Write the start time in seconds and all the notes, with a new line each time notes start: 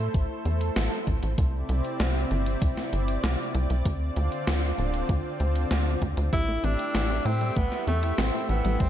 Already playing: A3 E4 A4 C5
0.14 A1, kick, closed hi-hat
0.45 E2, closed hi-hat
0.61 closed hi-hat
0.76 A1, snare, closed hi-hat
1.07 A1, kick, closed hi-hat
1.23 A1, closed hi-hat
1.38 C2 C3 C4 E4 D5, kick, closed hi-hat
1.69 C2, closed hi-hat
1.85 closed hi-hat
2.00 C2, snare, closed hi-hat
2.31 G1, closed hi-hat
2.46 closed hi-hat
2.62 C2, kick, closed hi-hat
2.77 snare
2.93 G1, closed hi-hat
3.08 closed hi-hat
3.24 C2, snare, closed hi-hat
3.55 C2, closed hi-hat
3.70 C2, closed hi-hat
3.85 D2 D3 C4 F4, kick, closed hi-hat
4.16 D2, closed hi-hat
4.32 closed hi-hat
4.47 D2, snare, closed hi-hat
4.78 D1, closed hi-hat
4.94 closed hi-hat
5.09 D2, kick, closed hi-hat
5.40 D2, closed hi-hat
5.55 closed hi-hat
5.71 D2, snare, closed hi-hat
6.02 D2, kick, closed hi-hat
6.17 D2, closed hi-hat
6.33 A1 G3 A3 E4 G4 E5, kick, closed hi-hat
6.48 A3
6.64 A1 C4 D4, closed hi-hat
6.79 closed hi-hat
6.95 A1 E4, snare, closed hi-hat
7.10 C4
7.25 A2 A3 C4, closed hi-hat
7.41 G3, closed hi-hat
7.57 A1 A3 B3, kick, closed hi-hat
7.72 snare
7.87 E2 A3 C4, closed hi-hat
8.03 E4, closed hi-hat
8.18 A1 C4, snare, closed hi-hat
8.34 A3
8.49 A1 B3, closed hi-hat
8.65 A1 G3, closed hi-hat
8.80 A1 G3 C4 A4, kick, closed hi-hat